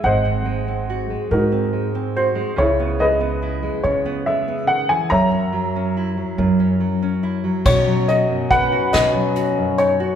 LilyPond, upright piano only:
\new Staff \with { instrumentName = "Upright piano" } { \time 6/8 \key b \major \tempo 4. = 47 << { fis''4. ais'4 bis'8 | cis''8 dis''4 cis''8 e''8 fis''16 gis''16 | ais''2 r4 | cis''8 dis''8 fis''8 dis''4 cis''8 | } \\ { <bis' dis''>4. <dis' fis'>4. | <e' gis'>8 <gis' b'>4. r4 | <cis'' e''>2 r4 | fis'4. fis'4. | } >> }